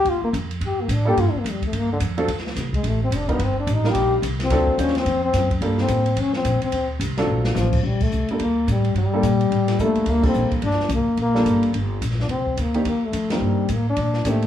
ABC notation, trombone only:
X:1
M:4/4
L:1/8
Q:"Swing" 1/4=216
K:Gm
V:1 name="Trombone"
F B, z2 G B, D G | (3F D B, G, A, B, D, z2 | z3 _A, =A, C D =B, | C D E G2 z2 C- |
C2 ^C =C2 C2 z | z C3 ^C =C2 C- | C z4 z ^E,2 | G, A,2 z B,2 G,2 |
G,6 A,2 | B, C2 z D2 B,2 | B,4 z3 D | C2 B,2 B, A,2 G,- |
G,2 B, D3 A,2 |]